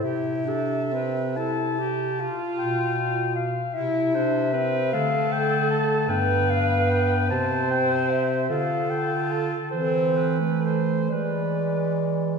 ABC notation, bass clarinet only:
X:1
M:6/8
L:1/8
Q:3/8=50
K:C
V:1 name="Bass clarinet" clef=bass
C,4- C, z | B,,3 C,3 | D,3 G,,3 | C,3 D,3 |
E,3 E,3 |]